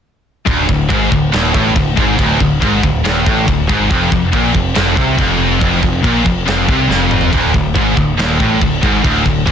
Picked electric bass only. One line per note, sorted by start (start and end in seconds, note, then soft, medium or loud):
0.47 0.67 D1 loud
0.69 0.89 D1 medium
0.90 1.10 G#1 medium
1.12 1.32 D1 medium
1.34 1.53 D#1 loud
1.54 1.74 A1 loud
1.76 1.96 D1 medium
1.97 2.17 G#1 loud
2.19 2.39 D1 loud
2.40 2.60 D1 medium
2.61 2.82 G#1 medium
2.83 3.03 D1 medium
3.04 3.25 D#1 medium
3.26 3.46 A1 loud
3.48 3.68 D1 medium
3.69 3.89 G#1 medium
3.90 4.10 F1 loud
4.12 4.32 F1 medium
4.33 4.53 A#1 loud
4.54 4.74 F1 medium
4.76 4.96 F1 medium
4.97 5.17 C2 loud
5.18 5.58 F1 loud
5.61 5.81 F1 medium
5.83 6.03 F1 medium
6.04 6.24 A#1 medium
6.26 6.46 F1 medium
6.46 6.67 F1 medium
6.68 6.88 C2 loud
6.89 7.29 F1 loud
7.33 7.53 D1 loud
7.54 7.74 D1 medium
7.75 7.96 G#1 loud
7.97 8.17 D1 medium
8.18 8.38 D#1 medium
8.40 8.60 A1 loud
8.61 8.81 D1 medium
8.83 9.03 G#1 loud
9.04 9.24 D1 medium
9.26 9.46 D1 medium
9.47 9.52 G#1 loud